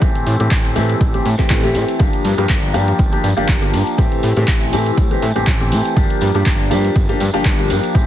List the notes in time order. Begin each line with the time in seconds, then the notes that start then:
0.01 A1 E3 A3 C4 G4, kick, closed hi-hat, tambourine
0.15 A2, closed hi-hat, tambourine
0.27 A2, open hi-hat, tambourine
0.39 A2 E3 A3 C4 G4, closed hi-hat, tambourine
0.51 A1, kick, clap, closed hi-hat
0.65 closed hi-hat, tambourine
0.75 A2 E3 A3 C4 G4, open hi-hat, tambourine
0.90 closed hi-hat, tambourine
1.01 A1, kick, closed hi-hat
1.14 E3 A3 C4 G4, closed hi-hat, tambourine
1.25 A2, open hi-hat, tambourine
1.38 A1 E3 A3 C4 G4, kick, clap, closed hi-hat
1.50 A1, kick, clap, closed hi-hat, tambourine
1.63 E3 A3 C4 G4, closed hi-hat, tambourine
1.75 A2, open hi-hat, tambourine
1.88 closed hi-hat, tambourine
1.99 G1 F3 A#3 D4 G4, kick, closed hi-hat, tambourine
2.13 closed hi-hat, tambourine
2.25 G2, open hi-hat, tambourine
2.38 G2 F3 A#3 D4 G4, closed hi-hat, tambourine
2.49 G1, kick, clap, closed hi-hat
2.63 closed hi-hat, tambourine
2.74 G2 F3 A#3 D4 G4, open hi-hat, tambourine
2.88 closed hi-hat, tambourine
2.99 G1, kick, closed hi-hat, tambourine
3.12 F3 A#3 D4 G4, closed hi-hat, tambourine
3.24 G2, open hi-hat, tambourine
3.37 G1 F3 A#3 D4 G4, closed hi-hat, tambourine
3.49 G1, kick, clap, closed hi-hat
3.62 F3 A#3 D4 G4, closed hi-hat, tambourine
3.73 G2, open hi-hat, tambourine
3.87 closed hi-hat, tambourine
3.98 A1 E3 A3 C4 G4, kick, closed hi-hat, tambourine
4.12 A2, closed hi-hat, tambourine
4.23 A2, open hi-hat, tambourine
4.36 A2 E3 A3 C4 G4, closed hi-hat, tambourine
4.48 A1, kick, clap, closed hi-hat, tambourine
4.62 closed hi-hat, tambourine
4.73 A2 E3 A3 C4 G4, open hi-hat, tambourine
4.86 closed hi-hat, tambourine
4.97 A1, kick, closed hi-hat, tambourine
5.11 E3 A3 C4 G4, closed hi-hat, tambourine
5.22 A2, open hi-hat, tambourine
5.35 A1 E3 A3 C4 G4, closed hi-hat, tambourine
5.47 A1, kick, clap, closed hi-hat
5.60 E3 A3 C4 G4, closed hi-hat, tambourine
5.72 A2, open hi-hat, tambourine
5.85 closed hi-hat, tambourine
5.96 G1 F3 A#3 D4 G4, kick, closed hi-hat, tambourine
6.10 closed hi-hat, tambourine
6.21 G2, open hi-hat, tambourine
6.34 G2 F3 A#3 D4 G4, closed hi-hat, tambourine
6.46 G1, kick, clap, closed hi-hat
6.60 closed hi-hat, tambourine
6.70 G2 F3 A#3 D4 G4, open hi-hat, tambourine
6.84 closed hi-hat, tambourine
6.95 G1, kick, closed hi-hat, tambourine
7.09 F3 A#3 D4 G4, closed hi-hat, tambourine
7.20 G2, open hi-hat, tambourine
7.33 G1 F3 A#3 D4 G4, closed hi-hat, tambourine
7.44 G1, kick, clap, closed hi-hat, tambourine
7.58 F3 A#3 D4 G4, closed hi-hat, tambourine
7.70 G2, open hi-hat, tambourine
7.84 closed hi-hat, tambourine
7.94 A1 E3 A3 C4 G4, kick, closed hi-hat, tambourine